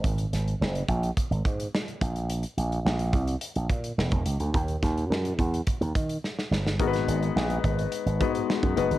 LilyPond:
<<
  \new Staff \with { instrumentName = "Grand piano" } { \time 4/4 \key gis \minor \tempo 4 = 106 r1 | r1 | r1 | <gis b dis' fis' ais' b'>4. r4 <gis b dis' fis' b'>8. r16 <gis b dis' fis' b'>8 | }
  \new Staff \with { instrumentName = "Slap bass" } { \clef bass \time 4/4 \key gis \minor gis,,8 gis,,8 fis,,8 ais,,8 r16 gis,,16 gis,8 r8 ais,,8~ | ais,,8 ais,,8 ais,,8 bis,,8 r16 ais,,16 ais,8 e,,16 e,,16 cis,16 d,16 | dis,8 dis,8 fis,8 e,8 r16 dis,16 dis8 r8 g,,8 | gis,,8 gis,,8 ais,,8 gis,,8 r16 gis,,16 gis,8 r16 fis,16 fis,,16 g,,16 | }
  \new DrumStaff \with { instrumentName = "Drums" } \drummode { \time 4/4 <hh bd>16 hh16 <hh sn>16 hh16 sn16 hh16 <hh bd>16 hh16 <hh bd>16 hh16 <hh bd>16 hh16 sn16 hh16 <hh bd>16 hh16 | hh16 hh16 hh16 hh16 sn16 hh16 <hh bd>16 hh16 hh16 hh16 <hh bd>16 hh16 sn16 <hh bd>16 hh16 hh16 | <hh bd>16 hh16 <hh bd sn>16 hh16 sn16 hh16 <hh bd>16 hh16 <hh bd>16 hh16 <hh bd>16 hh16 sn16 sn16 sn16 sn16 | <hh bd>16 <hh sn>16 hh16 hh16 sn16 hh16 <hh bd>16 hh16 hh16 hh16 <hh bd>16 hh16 sn16 <hh bd>16 hh16 hh16 | }
>>